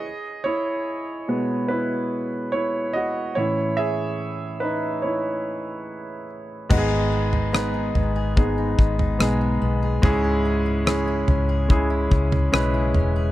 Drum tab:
CC |----------------|----------------|x---------------|----------------|
SD |----------------|----------------|----r-------r---|----r-------r---|
FT |----------------|----------------|o--o--o----o----|o-----o----o--o-|
BD |----------------|----------------|o-------o-o-----|o-------o-o-----|